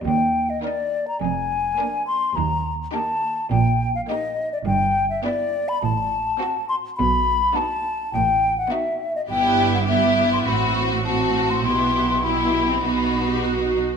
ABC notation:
X:1
M:4/4
L:1/16
Q:1/4=104
K:Eblyd
V:1 name="Flute"
g3 e d3 b _a6 c'2 | b3 z a4 g3 f e3 d | [K:Em] g3 e d3 b a6 c'2 | b4 a4 g3 f e3 ^d |
g3 f e3 c' b3 z a3 c' | c'4 b8 z4 |]
V:2 name="Violin section"
z4 B4 z4 B4 | z4 G4 z4 G4 | [K:Em] z4 G4 z4 F4 | z4 F4 z4 F4 |
G4 G4 F4 F4 | G4 G4 F6 z2 |]
V:3 name="Violin section"
z4 E4 z4 D4 | z4 E4 z4 E4 | [K:Em] z4 E4 z4 F4 | z4 ^D4 z4 D4 |
E4 E4 F4 F4 | E4 E4 ^D6 z2 |]
V:4 name="Viola section"
z4 B,4 z4 B,4 | z4 B,4 z4 B,4 | [K:Em] z4 B,4 z4 C4 | z4 B,4 z4 B,4 |
B,4 B,4 C4 C4 | B,4 E3 C B,3 G F4 |]
V:5 name="Cello section" clef=bass
E,,4 z4 F,,4 z4 | E,,4 z4 B,,4 z4 | [K:Em] G,,4 z4 A,,4 z4 | B,,4 z4 A,,4 z4 |
G,,8 A,,8 | B,,8 B,,6 z2 |]
V:6 name="Double bass section" clef=bass
E,,4 z4 F,,,4 z4 | E,,4 z4 B,,,4 z4 | [K:Em] G,,,4 z4 A,,,4 z4 | B,,,4 z4 A,,,4 z4 |
G,,,8 A,,,8 | B,,,8 B,,,6 z2 |]